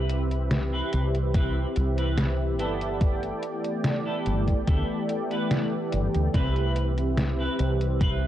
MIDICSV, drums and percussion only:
0, 0, Header, 1, 2, 480
1, 0, Start_track
1, 0, Tempo, 833333
1, 1737, Time_signature, 4, 2, 24, 8
1, 4766, End_track
2, 0, Start_track
2, 0, Title_t, "Drums"
2, 55, Note_on_c, 9, 42, 76
2, 113, Note_off_c, 9, 42, 0
2, 180, Note_on_c, 9, 42, 53
2, 238, Note_off_c, 9, 42, 0
2, 294, Note_on_c, 9, 38, 113
2, 294, Note_on_c, 9, 42, 78
2, 351, Note_off_c, 9, 38, 0
2, 351, Note_off_c, 9, 42, 0
2, 534, Note_on_c, 9, 42, 80
2, 592, Note_off_c, 9, 42, 0
2, 661, Note_on_c, 9, 42, 52
2, 718, Note_off_c, 9, 42, 0
2, 774, Note_on_c, 9, 42, 78
2, 775, Note_on_c, 9, 36, 110
2, 831, Note_off_c, 9, 42, 0
2, 832, Note_off_c, 9, 36, 0
2, 1013, Note_on_c, 9, 42, 78
2, 1071, Note_off_c, 9, 42, 0
2, 1139, Note_on_c, 9, 42, 54
2, 1197, Note_off_c, 9, 42, 0
2, 1253, Note_on_c, 9, 38, 115
2, 1253, Note_on_c, 9, 42, 79
2, 1310, Note_off_c, 9, 38, 0
2, 1310, Note_off_c, 9, 42, 0
2, 1493, Note_on_c, 9, 42, 75
2, 1551, Note_off_c, 9, 42, 0
2, 1620, Note_on_c, 9, 42, 52
2, 1677, Note_off_c, 9, 42, 0
2, 1733, Note_on_c, 9, 42, 79
2, 1734, Note_on_c, 9, 36, 117
2, 1790, Note_off_c, 9, 42, 0
2, 1792, Note_off_c, 9, 36, 0
2, 1860, Note_on_c, 9, 42, 37
2, 1917, Note_off_c, 9, 42, 0
2, 1973, Note_on_c, 9, 42, 76
2, 2031, Note_off_c, 9, 42, 0
2, 2099, Note_on_c, 9, 42, 53
2, 2156, Note_off_c, 9, 42, 0
2, 2213, Note_on_c, 9, 38, 117
2, 2213, Note_on_c, 9, 42, 79
2, 2270, Note_off_c, 9, 38, 0
2, 2270, Note_off_c, 9, 42, 0
2, 2453, Note_on_c, 9, 42, 79
2, 2511, Note_off_c, 9, 42, 0
2, 2578, Note_on_c, 9, 42, 52
2, 2580, Note_on_c, 9, 36, 61
2, 2636, Note_off_c, 9, 42, 0
2, 2637, Note_off_c, 9, 36, 0
2, 2692, Note_on_c, 9, 42, 79
2, 2694, Note_on_c, 9, 36, 118
2, 2750, Note_off_c, 9, 42, 0
2, 2751, Note_off_c, 9, 36, 0
2, 2932, Note_on_c, 9, 42, 82
2, 2990, Note_off_c, 9, 42, 0
2, 3058, Note_on_c, 9, 42, 53
2, 3116, Note_off_c, 9, 42, 0
2, 3173, Note_on_c, 9, 38, 122
2, 3173, Note_on_c, 9, 42, 81
2, 3231, Note_off_c, 9, 38, 0
2, 3231, Note_off_c, 9, 42, 0
2, 3412, Note_on_c, 9, 42, 79
2, 3470, Note_off_c, 9, 42, 0
2, 3539, Note_on_c, 9, 42, 52
2, 3597, Note_off_c, 9, 42, 0
2, 3653, Note_on_c, 9, 42, 77
2, 3654, Note_on_c, 9, 36, 118
2, 3711, Note_off_c, 9, 36, 0
2, 3711, Note_off_c, 9, 42, 0
2, 3779, Note_on_c, 9, 42, 36
2, 3837, Note_off_c, 9, 42, 0
2, 3893, Note_on_c, 9, 42, 77
2, 3951, Note_off_c, 9, 42, 0
2, 4019, Note_on_c, 9, 42, 53
2, 4077, Note_off_c, 9, 42, 0
2, 4133, Note_on_c, 9, 38, 118
2, 4133, Note_on_c, 9, 42, 77
2, 4191, Note_off_c, 9, 38, 0
2, 4191, Note_off_c, 9, 42, 0
2, 4374, Note_on_c, 9, 42, 75
2, 4431, Note_off_c, 9, 42, 0
2, 4499, Note_on_c, 9, 42, 51
2, 4557, Note_off_c, 9, 42, 0
2, 4613, Note_on_c, 9, 42, 79
2, 4614, Note_on_c, 9, 36, 118
2, 4671, Note_off_c, 9, 36, 0
2, 4671, Note_off_c, 9, 42, 0
2, 4766, End_track
0, 0, End_of_file